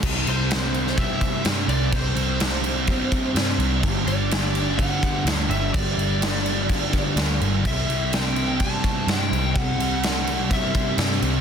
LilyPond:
<<
  \new Staff \with { instrumentName = "Lead electric guitar" } { \time 4/4 \key c \lydian \tempo 4 = 126 r8 c''4. e''4 r8 d''8 | c''2.~ c''8 r8 | r8 d''4. fis''4 r8 e''8 | d''2.~ d''8 r8 |
e''4 g''4 a''4 g''4 | fis''2 e''4 r4 | }
  \new Staff \with { instrumentName = "Distorted electric guitar" } { \clef bass \time 4/4 \key c \lydian <c g c'>4 <c g c'>4 <c g c'>4 <c g c'>4 | <c g c'>4 <c g c'>4 <c g c'>4 <c g c'>4 | <g, d g>4 <g, d g>4 <g, d g>4 <g, d g>4 | <g, d g>4 <g, d g>4 <g, d g>4 <g, d g>4 |
<c g c'>4 <c g c'>4 <c g c'>4 <c g c'>4 | <c g c'>4 <c g c'>4 <c g c'>4 <c g c'>4 | }
  \new Staff \with { instrumentName = "Picked electric bass" } { \clef bass \time 4/4 \key c \lydian c,8 c,2 r8 g,8 c,8 | c,8 c,2 r8 g,8 c,8 | g,,8 g,,2 r8 d,8 g,,8 | g,,8 g,,2 r8 d,8 g,,8 |
c,8 c,2 r8 g,8 c,8 | c,8 c,2 r8 g,8 c,8 | }
  \new DrumStaff \with { instrumentName = "Drums" } \drummode { \time 4/4 <cymc bd>8 cymc8 <cymc sn>8 cymc16 sn16 <cymc bd>8 <cymc bd>8 <cymc sn>8 cymc8 | <cymc bd>8 cymc8 <cymc sn>8 cymc8 <cymc bd>8 <cymc bd>8 <cymc sn>16 sn16 cymc8 | <cymc bd>8 cymc8 <cymc sn>8 cymc8 <cymc bd>8 <cymc bd>8 <cymc sn>8 cymc8 | <cymc bd>8 cymc8 <cymc sn>8 cymc8 <cymc bd>8 <cymc bd>8 <cymc sn>8 cymc8 |
<cymc bd>8 cymc8 <cymc sn>8 cymc8 <cymc bd>8 <cymc bd>8 <cymc sn>8 cymc8 | <cymc bd>8 cymc8 <cymc sn>8 cymc8 <cymc bd>8 <cymc bd>8 <cymc sn>16 sn16 cymc8 | }
>>